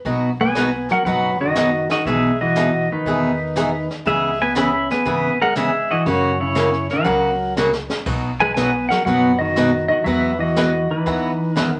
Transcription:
0.05 B1 B2 F#3 B3 D#4 F#4, brush sweep, kick
0.41 B3 B4 G#5
0.55 B2 F#3 B3 D#4 F#4, snare, hi-hat pedal
0.89 F#3 F#5, snare
0.93 A#4
1.05 F#1 B2 F#3 B3 D#4 F#4 B4 F#5, brush sweep, kick
1.41 D#3 F#4 D#5
1.55 B2 F#3 B3 D#4 F#4, snare, hi-hat pedal
1.89 D#3 F#4 D#5, snare
2.05 B1 B2 E3 G#3 B3 D#4 G#4 E5, brush sweep, kick
2.41 E3 F#4 D#5
2.55 B2 E3 B3 D#4 G#4, snare, hi-hat pedal
2.92 D#3 D#4 B4
3.06 E2 B2 E3 B3 D#4 G#4, brush sweep, kick
3.56 B2 E3 B3 D#4 G#4, snare, hi-hat pedal
3.90 snare
4.06 C#2 C#3 E3 G#3 B3 C#4 G#4 E5, brush sweep, kick
4.42 B3 B4 G#5
4.55 C#3 E3 B3 C#4 G#4 E5 B5, snare, hi-hat pedal
4.90 B3 B4 G#5, snare
5.05 G#1 C#3 E3 B3 C#4 G#4, brush sweep, kick
5.42 G#3 A#4 F#5
5.55 C#3 E3 G#3 B3 C#4 G#4 E5, snare, hi-hat pedal
5.91 E3 F#4 D#5
6.06 F#2 C#3 F#3 A#3 C#4 F#4 C#5, brush sweep, kick
6.40 C#3 E4 C#5
6.55 C#3 F#3 A#3 C#4 F#4, snare, hi-hat pedal
6.73 snare
6.89 F#3 A#4 F#5, snare
7.04 C#2 C#3 F#3 A#3 C#4 F#4, brush sweep, kick
7.56 C#3 F#3 A#3 C#4 F#4, snare, hi-hat pedal
7.73 snare
7.90 snare
8.06 B1 B2 F#3 B3 D#4 F#4, brush sweep, kick, crash
8.40 G#3 B4 G#5
8.54 B2 F#3 B3 D#4 F#4 B4 G#5, snare, hi-hat pedal
8.89 F#3 A#4 F#5, snare
9.06 F#1 B2 F#3 B3 D#4 F#4 B4, brush sweep, kick
9.39 D#3 F#4 D#5
9.56 B2 F#3 B3 D#4 F#4, snare, hi-hat pedal
9.88 D#3 F#4 D#5
10.04 E2 E3 F#3 B3 F#4 B4 E5, brush sweep, kick
10.39 E3 F#4 D#5
10.56 E3 F#3 B3 F#4 B4, snare, hi-hat pedal
10.91 E3 D#4 B4
11.06 D#2 E3 F#3 B3 F#4 B4, brush sweep, kick
11.55 E2 D#3 E3 F#3 B3 F#4 A#4 B4, snare, hi-hat pedal

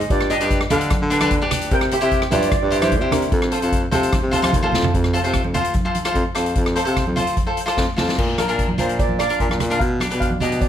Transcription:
0.01 closed hi-hat
0.10 G2 F4 D5, kick, closed hi-hat
0.21 cross-stick
0.30 D4 G4 B4 D#5, closed hi-hat
0.40 G2 D4 G4 B4, closed hi-hat
0.50 kick, closed hi-hat
0.61 cross-stick
0.70 D3 D4 G4 A4 B4 F5, closed hi-hat, high conga, low conga
0.81 closed hi-hat
0.90 kick, cross-stick, closed hi-hat, high conga
1.02 D3
1.10 D4 G4 B4, closed hi-hat
1.21 D4 G4 B4, cross-stick, closed hi-hat, high conga
1.31 kick, closed hi-hat, low conga
1.41 D4 G4 B4
1.51 cross-stick, closed hi-hat, low conga
1.61 closed hi-hat
1.71 C3 A#4 G5, kick, closed hi-hat
1.81 cross-stick
1.91 E4 G4 C5 E5, closed hi-hat
2.01 C3 E4 G4 C5 E5, closed hi-hat
2.11 kick, closed hi-hat
2.22 cross-stick
2.31 G2 E4 F4 G4 C5 D5, closed hi-hat, high conga, low conga
2.41 D5, closed hi-hat
2.49 D5, kick, cross-stick, closed hi-hat, high conga
2.56 D5
2.62 G2 D5
2.69 E4 G4 C5 D5, closed hi-hat
2.81 E4 G4 C5, cross-stick, closed hi-hat, high conga
2.92 kick, closed hi-hat, low conga
3.01 C3 E4 G4 C5
3.12 D4 A#4, cross-stick, closed hi-hat, low conga
3.22 closed hi-hat
3.32 F2 C4 A4, kick, closed hi-hat
3.42 cross-stick
3.52 F4 A4 C5, closed hi-hat
3.62 F2 F4 A4 C5, closed hi-hat
3.72 kick, closed hi-hat
3.91 C3 F4 A4 C5, closed hi-hat, high conga, low conga
4.03 closed hi-hat
4.12 kick, cross-stick, closed hi-hat, high conga
4.23 C3
4.31 F4 A4 C5, closed hi-hat, low conga
4.42 F4 A4 C5, cross-stick, closed hi-hat, high conga
4.53 D#2, kick, closed hi-hat, low conga
4.63 F4 A4 C5, high conga
4.72 F2, snare, low conga
4.83 floor tom, low conga
4.94 F2, kick, closed hi-hat
5.04 cross-stick
5.13 F4 A4 C5, closed hi-hat
5.24 C3 F4 A4 C5, closed hi-hat
5.34 kick, cross-stick, closed hi-hat, low conga
5.44 F2, high conga
5.54 F4 A4 C5, closed hi-hat, low conga
5.65 closed hi-hat
5.74 kick, closed hi-hat, high conga
5.85 F4 A4 C5
5.95 closed hi-hat, high conga
6.05 F4 A4 C5, cross-stick, closed hi-hat
6.15 F2, kick, closed hi-hat
6.35 F2 F4 A4 C5, cross-stick, closed hi-hat
6.46 closed hi-hat
6.55 F2, kick, closed hi-hat
6.66 cross-stick
6.76 F4 A4 C5, closed hi-hat
6.85 C3 F4 A4 C5, closed hi-hat
6.97 kick, cross-stick, closed hi-hat, low conga
7.07 F2, high conga
7.16 F4 A4 C5, closed hi-hat, low conga
7.27 closed hi-hat
7.37 kick, closed hi-hat, high conga
7.47 F4 A4 C5
7.57 closed hi-hat
7.66 F4 A4 C5, cross-stick, closed hi-hat
7.77 F2, kick, snare
7.96 F2 F4 A4 C5, snare, low conga
8.09 snare
8.18 A#2, kick, crash
8.38 D4 F4 A#4, cross-stick, closed hi-hat, high conga
8.48 A#2 D4 F4 A#4, closed hi-hat
8.59 kick, closed hi-hat
8.68 high conga
8.78 A#2 D4 F4 A#4 C5, closed hi-hat, low conga
8.89 closed hi-hat
8.99 D5, kick, closed hi-hat
9.09 high conga
9.19 D4 F4 A#4 D5, cross-stick, closed hi-hat
9.29 D4 F4 A#4, closed hi-hat
9.40 A#2, kick, closed hi-hat
9.49 A#2, cross-stick, high conga
9.60 A#2, cross-stick, closed hi-hat, low conga
9.70 D4 F4 A#4, closed hi-hat
9.79 B2 F5, kick, closed hi-hat
10.00 D4 G4 B4, cross-stick, closed hi-hat, high conga
10.10 B2 D4 G4 B4, closed hi-hat
10.20 F5, kick, closed hi-hat
10.31 high conga
10.40 B2 D4 G4 B4 D#5, closed hi-hat, low conga
10.52 closed hi-hat
10.61 D5, kick, closed hi-hat

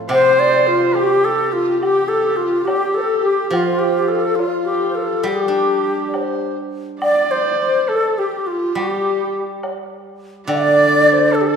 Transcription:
Already playing: A2 F3 A3 C4 F4
0.09 C3 C5, high woodblock
0.39 D5
0.67 F4
0.95 G4
1.25 A4
1.52 F4
1.81 G4, high woodblock
2.08 A4
2.13 A4
2.36 F4
2.42 F4
2.65 G4, high woodblock, low woodblock
2.69 G4
2.94 A4 C5
3.01 A4
3.23 G4
3.51 F3 F4, high woodblock
3.55 F4
3.79 G4
3.83 G4
4.08 A4
4.12 G4 A4
4.20 A4
4.25 A4
4.35 F4, low woodblock
4.39 F4
4.65 G4
4.89 C5
4.95 A4 C5
5.03 A4
5.23 G3 G4, high woodblock
5.48 D4
6.07 D5
6.14 C5, high woodblock, low woodblock
7.02 D5, high woodblock
7.31 C5
7.59 C5
7.89 A4 C5
7.96 A4
8.18 G4
8.47 F4 G4
8.53 F4
8.75 G3 G4, high woodblock
9.63 high woodblock, low woodblock
10.47 D3 D5, high woodblock
10.55 F5
10.62 D5
11.13 C5
11.33 A4
11.41 G4
11.47 A4

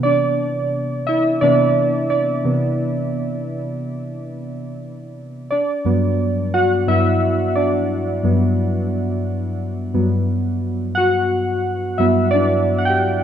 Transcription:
Already playing: C3 E3 B3
0.03 D4 D5
1.07 E4 E5
1.41 C3 E3 B3 D4 D5
2.10 D4 D5
2.44 C3 E3 B3
5.51 D4 D5
5.85 G2 F#3 B3
6.54 F#4 F#5
6.87 G2 F#3 B3 E4 E5
7.48 E5
7.55 D4 D5
8.23 G2 F#3 B3
9.94 G2 F#3 B3
10.95 F#4 F#5
11.98 G2 F#3 B3 E4 E5
12.31 D4 D5
12.78 F#5
12.85 G5
12.89 G4

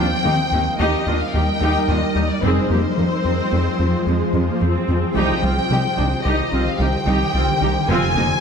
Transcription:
Already playing: D#2 G3 D#4 A#4 D#5 G5
0.24 D#2 D#3 D#4 G4
0.52 D#2 A#3 D#4
0.79 D#2 D#4 G4 D#5
1.06 D#2 D4 F4
1.20 F5
1.34 D#2 D#4 G4 G5
1.61 D#2 D#4 G4
1.88 D#2 D4 F4 D#5
2.15 D#2 D#4 G4
2.31 D5
2.42 F1 F2 F3 C4 F4 G#4 C5
2.70 F2 A#3 G4
2.98 F2 F3 C4
3.25 F2
3.52 F2
3.80 F2
4.07 F2 G#3
4.33 F2
4.48 A#3
4.61 F2 C4
4.89 F2
5.16 C2 D3 D#3 D#4 G4 G5
5.43 C2 C4 F4
5.70 C2 C3 D#4 G4
5.98 C2 D4 D#4
6.25 C2 D#4 G4 D#5
6.52 C2 C4 F4
6.67 F5
6.80 C2 D#4 G4 G5
7.07 C2 D#4 G4
7.34 C2 C4 F4
7.61 C2 D#4 G4
7.88 F1 F2 F3 C4 F4 C5 G#5
8.16 F2 A#3 D#4

